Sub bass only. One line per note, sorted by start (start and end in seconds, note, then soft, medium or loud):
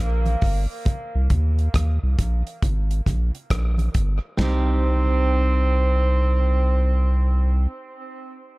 0.00 0.36 A#1 medium
0.43 0.67 G1 medium
1.15 1.28 C2 loud
1.31 1.69 D#2 medium
1.74 1.99 D#2 medium
2.03 2.16 C2 medium
2.19 2.43 A#1 medium
2.63 3.01 G#1 medium
3.07 3.31 A#1 medium
3.51 3.89 A#1 medium
3.95 4.20 G1 medium
4.39 7.67 C2 loud